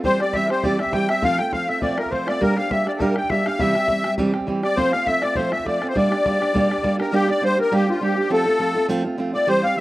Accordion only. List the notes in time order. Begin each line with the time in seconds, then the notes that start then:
0.05 C5
0.21 D5
0.34 E5
0.51 C5
0.65 D5
0.80 E5
0.93 G5
1.09 E5
1.24 F5
1.39 G5
1.53 F5
1.69 E5
1.82 D5
1.99 A#4
2.12 C5
2.28 D5
2.42 A#4
2.57 F5
2.71 E5
2.87 D5
2.97 A4 A#4
3.17 G5
3.31 E5
3.46 F5
3.59 E5
4.63 D5
4.77 C5
4.92 F5
5.06 E5
5.22 D5
5.36 C5
5.52 E5
5.67 D5
5.89 C5
5.97 D5
7.01 A#4
7.14 G4
7.30 D5
7.45 C5
7.61 A#4
7.74 G4
7.90 F4
8.03 G4
8.20 G4
8.33 A4
9.34 D5
9.48 C5
9.63 F5
9.77 E5